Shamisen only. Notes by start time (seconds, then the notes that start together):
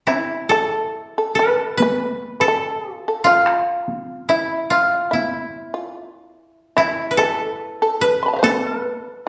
0.08 E4
0.51 A4
1.18 A4
1.39 B4
1.82 B4
2.40 B4
2.48 A4
3.08 A4
3.27 F4
4.30 E4
4.72 F4
5.11 E4
5.74 F4
6.77 E4
7.19 A4
7.82 A4
8.23 B5 C6
8.28 A5
8.33 E5 F5
8.39 C5
8.43 B4